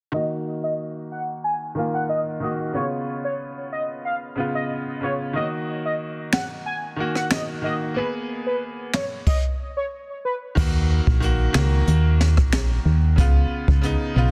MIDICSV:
0, 0, Header, 1, 5, 480
1, 0, Start_track
1, 0, Key_signature, -6, "minor"
1, 0, Tempo, 652174
1, 101, Time_signature, 4, 2, 24, 8
1, 10532, End_track
2, 0, Start_track
2, 0, Title_t, "Soft synth lead"
2, 0, Program_c, 0, 80
2, 102, Note_on_c, 0, 75, 106
2, 180, Note_off_c, 0, 75, 0
2, 468, Note_on_c, 0, 75, 76
2, 537, Note_off_c, 0, 75, 0
2, 823, Note_on_c, 0, 78, 81
2, 900, Note_off_c, 0, 78, 0
2, 1061, Note_on_c, 0, 80, 88
2, 1138, Note_off_c, 0, 80, 0
2, 1430, Note_on_c, 0, 78, 82
2, 1498, Note_off_c, 0, 78, 0
2, 1540, Note_on_c, 0, 75, 77
2, 1618, Note_off_c, 0, 75, 0
2, 1781, Note_on_c, 0, 75, 70
2, 1858, Note_off_c, 0, 75, 0
2, 2021, Note_on_c, 0, 73, 94
2, 2099, Note_off_c, 0, 73, 0
2, 2388, Note_on_c, 0, 73, 77
2, 2457, Note_off_c, 0, 73, 0
2, 2741, Note_on_c, 0, 75, 85
2, 2818, Note_off_c, 0, 75, 0
2, 2980, Note_on_c, 0, 77, 84
2, 3058, Note_off_c, 0, 77, 0
2, 3349, Note_on_c, 0, 75, 88
2, 3417, Note_off_c, 0, 75, 0
2, 3702, Note_on_c, 0, 73, 81
2, 3779, Note_off_c, 0, 73, 0
2, 3940, Note_on_c, 0, 75, 108
2, 4018, Note_off_c, 0, 75, 0
2, 4309, Note_on_c, 0, 75, 73
2, 4377, Note_off_c, 0, 75, 0
2, 4662, Note_on_c, 0, 78, 81
2, 4740, Note_off_c, 0, 78, 0
2, 4901, Note_on_c, 0, 80, 93
2, 4979, Note_off_c, 0, 80, 0
2, 5268, Note_on_c, 0, 78, 82
2, 5337, Note_off_c, 0, 78, 0
2, 5381, Note_on_c, 0, 75, 75
2, 5459, Note_off_c, 0, 75, 0
2, 5622, Note_on_c, 0, 75, 73
2, 5699, Note_off_c, 0, 75, 0
2, 5861, Note_on_c, 0, 71, 98
2, 5939, Note_off_c, 0, 71, 0
2, 6230, Note_on_c, 0, 71, 79
2, 6298, Note_off_c, 0, 71, 0
2, 6583, Note_on_c, 0, 73, 83
2, 6660, Note_off_c, 0, 73, 0
2, 6822, Note_on_c, 0, 75, 85
2, 6900, Note_off_c, 0, 75, 0
2, 7189, Note_on_c, 0, 73, 85
2, 7258, Note_off_c, 0, 73, 0
2, 7543, Note_on_c, 0, 71, 79
2, 7620, Note_off_c, 0, 71, 0
2, 10532, End_track
3, 0, Start_track
3, 0, Title_t, "Grand piano"
3, 0, Program_c, 1, 0
3, 87, Note_on_c, 1, 51, 69
3, 101, Note_on_c, 1, 58, 61
3, 115, Note_on_c, 1, 66, 73
3, 220, Control_c, 1, 64, 127
3, 888, Note_off_c, 1, 51, 0
3, 895, Note_off_c, 1, 58, 0
3, 903, Note_off_c, 1, 66, 0
3, 1287, Note_on_c, 1, 51, 72
3, 1301, Note_on_c, 1, 58, 66
3, 1316, Note_on_c, 1, 65, 81
3, 1694, Note_off_c, 1, 51, 0
3, 1701, Note_off_c, 1, 58, 0
3, 1709, Note_off_c, 1, 65, 0
3, 1767, Note_on_c, 1, 51, 69
3, 1781, Note_on_c, 1, 58, 58
3, 1796, Note_on_c, 1, 66, 73
3, 1974, Note_off_c, 1, 51, 0
3, 1981, Note_off_c, 1, 58, 0
3, 1988, Note_off_c, 1, 66, 0
3, 2007, Note_on_c, 1, 49, 67
3, 2021, Note_on_c, 1, 59, 63
3, 2030, Control_c, 1, 64, 0
3, 2036, Note_on_c, 1, 65, 75
3, 2156, Control_c, 1, 64, 127
3, 2808, Note_off_c, 1, 49, 0
3, 2816, Note_off_c, 1, 59, 0
3, 2823, Note_off_c, 1, 65, 0
3, 3206, Note_on_c, 1, 49, 73
3, 3220, Note_on_c, 1, 59, 67
3, 3235, Note_on_c, 1, 65, 83
3, 3614, Note_off_c, 1, 49, 0
3, 3621, Note_off_c, 1, 59, 0
3, 3628, Note_off_c, 1, 65, 0
3, 3686, Note_on_c, 1, 49, 66
3, 3700, Note_on_c, 1, 59, 59
3, 3714, Note_on_c, 1, 65, 70
3, 3893, Note_off_c, 1, 49, 0
3, 3901, Note_off_c, 1, 59, 0
3, 3908, Note_off_c, 1, 65, 0
3, 3925, Note_on_c, 1, 51, 69
3, 3939, Note_on_c, 1, 58, 62
3, 3950, Control_c, 1, 64, 0
3, 3954, Note_on_c, 1, 66, 77
3, 4097, Control_c, 1, 64, 127
3, 4727, Note_off_c, 1, 51, 0
3, 4734, Note_off_c, 1, 58, 0
3, 4742, Note_off_c, 1, 66, 0
3, 5125, Note_on_c, 1, 51, 69
3, 5140, Note_on_c, 1, 58, 66
3, 5154, Note_on_c, 1, 66, 84
3, 5533, Note_off_c, 1, 51, 0
3, 5541, Note_off_c, 1, 58, 0
3, 5548, Note_off_c, 1, 66, 0
3, 5606, Note_on_c, 1, 51, 66
3, 5622, Note_on_c, 1, 58, 61
3, 5635, Note_on_c, 1, 66, 74
3, 5814, Note_off_c, 1, 51, 0
3, 5821, Note_off_c, 1, 58, 0
3, 5828, Note_off_c, 1, 66, 0
3, 5846, Note_on_c, 1, 58, 70
3, 5860, Note_on_c, 1, 59, 65
3, 5869, Control_c, 1, 64, 0
3, 5875, Note_on_c, 1, 68, 76
3, 6020, Control_c, 1, 64, 127
3, 6648, Note_off_c, 1, 58, 0
3, 6655, Note_off_c, 1, 59, 0
3, 6663, Note_off_c, 1, 68, 0
3, 6830, Control_c, 1, 64, 0
3, 7766, Note_on_c, 1, 51, 86
3, 7780, Note_on_c, 1, 58, 78
3, 7795, Note_on_c, 1, 66, 95
3, 7910, Control_c, 1, 64, 127
3, 8173, Note_off_c, 1, 51, 0
3, 8181, Note_off_c, 1, 58, 0
3, 8188, Note_off_c, 1, 66, 0
3, 8245, Note_on_c, 1, 51, 93
3, 8260, Note_on_c, 1, 58, 84
3, 8275, Note_on_c, 1, 66, 103
3, 8453, Note_off_c, 1, 51, 0
3, 8460, Note_off_c, 1, 58, 0
3, 8468, Note_off_c, 1, 66, 0
3, 8485, Note_on_c, 1, 51, 87
3, 8499, Note_on_c, 1, 58, 81
3, 8514, Note_on_c, 1, 66, 96
3, 9287, Note_off_c, 1, 51, 0
3, 9295, Note_off_c, 1, 58, 0
3, 9302, Note_off_c, 1, 66, 0
3, 9685, Note_on_c, 1, 49, 83
3, 9700, Note_on_c, 1, 59, 78
3, 9711, Control_c, 1, 64, 0
3, 9714, Note_on_c, 1, 65, 91
3, 9832, Control_c, 1, 64, 127
3, 10093, Note_off_c, 1, 49, 0
3, 10101, Note_off_c, 1, 59, 0
3, 10108, Note_off_c, 1, 65, 0
3, 10168, Note_on_c, 1, 49, 95
3, 10182, Note_on_c, 1, 59, 83
3, 10197, Note_on_c, 1, 63, 102
3, 10374, Note_off_c, 1, 49, 0
3, 10382, Note_off_c, 1, 59, 0
3, 10389, Note_off_c, 1, 63, 0
3, 10407, Note_on_c, 1, 49, 84
3, 10422, Note_on_c, 1, 59, 77
3, 10436, Note_on_c, 1, 65, 98
3, 10532, Note_off_c, 1, 49, 0
3, 10532, Note_off_c, 1, 59, 0
3, 10532, Note_off_c, 1, 65, 0
3, 10532, End_track
4, 0, Start_track
4, 0, Title_t, "FM bass"
4, 0, Program_c, 2, 39
4, 7781, Note_on_c, 2, 39, 108
4, 8099, Note_off_c, 2, 39, 0
4, 8149, Note_on_c, 2, 34, 91
4, 8454, Note_off_c, 2, 34, 0
4, 8501, Note_on_c, 2, 37, 94
4, 8709, Note_off_c, 2, 37, 0
4, 8741, Note_on_c, 2, 39, 101
4, 9110, Note_on_c, 2, 34, 81
4, 9121, Note_off_c, 2, 39, 0
4, 9415, Note_off_c, 2, 34, 0
4, 9461, Note_on_c, 2, 39, 90
4, 9702, Note_on_c, 2, 37, 112
4, 9713, Note_off_c, 2, 39, 0
4, 9909, Note_off_c, 2, 37, 0
4, 10069, Note_on_c, 2, 37, 88
4, 10277, Note_off_c, 2, 37, 0
4, 10422, Note_on_c, 2, 35, 92
4, 10532, Note_off_c, 2, 35, 0
4, 10532, End_track
5, 0, Start_track
5, 0, Title_t, "Drums"
5, 4656, Note_on_c, 9, 26, 84
5, 4659, Note_on_c, 9, 38, 108
5, 4730, Note_off_c, 9, 26, 0
5, 4732, Note_off_c, 9, 38, 0
5, 5266, Note_on_c, 9, 37, 87
5, 5340, Note_off_c, 9, 37, 0
5, 5378, Note_on_c, 9, 26, 85
5, 5380, Note_on_c, 9, 38, 103
5, 5451, Note_off_c, 9, 26, 0
5, 5454, Note_off_c, 9, 38, 0
5, 6577, Note_on_c, 9, 26, 88
5, 6579, Note_on_c, 9, 38, 114
5, 6650, Note_off_c, 9, 26, 0
5, 6653, Note_off_c, 9, 38, 0
5, 6820, Note_on_c, 9, 36, 103
5, 6820, Note_on_c, 9, 49, 88
5, 6894, Note_off_c, 9, 36, 0
5, 6894, Note_off_c, 9, 49, 0
5, 7781, Note_on_c, 9, 36, 109
5, 7781, Note_on_c, 9, 49, 88
5, 7855, Note_off_c, 9, 36, 0
5, 7855, Note_off_c, 9, 49, 0
5, 8149, Note_on_c, 9, 36, 98
5, 8222, Note_off_c, 9, 36, 0
5, 8260, Note_on_c, 9, 42, 66
5, 8334, Note_off_c, 9, 42, 0
5, 8496, Note_on_c, 9, 26, 90
5, 8499, Note_on_c, 9, 38, 112
5, 8570, Note_off_c, 9, 26, 0
5, 8572, Note_off_c, 9, 38, 0
5, 8739, Note_on_c, 9, 42, 72
5, 8813, Note_off_c, 9, 42, 0
5, 8984, Note_on_c, 9, 38, 64
5, 9057, Note_off_c, 9, 38, 0
5, 9107, Note_on_c, 9, 37, 90
5, 9110, Note_on_c, 9, 36, 99
5, 9180, Note_off_c, 9, 37, 0
5, 9184, Note_off_c, 9, 36, 0
5, 9219, Note_on_c, 9, 26, 85
5, 9222, Note_on_c, 9, 38, 111
5, 9222, Note_on_c, 9, 42, 81
5, 9293, Note_off_c, 9, 26, 0
5, 9295, Note_off_c, 9, 38, 0
5, 9296, Note_off_c, 9, 42, 0
5, 9701, Note_on_c, 9, 42, 84
5, 9702, Note_on_c, 9, 36, 108
5, 9775, Note_off_c, 9, 36, 0
5, 9775, Note_off_c, 9, 42, 0
5, 10069, Note_on_c, 9, 36, 98
5, 10143, Note_off_c, 9, 36, 0
5, 10180, Note_on_c, 9, 42, 68
5, 10254, Note_off_c, 9, 42, 0
5, 10532, End_track
0, 0, End_of_file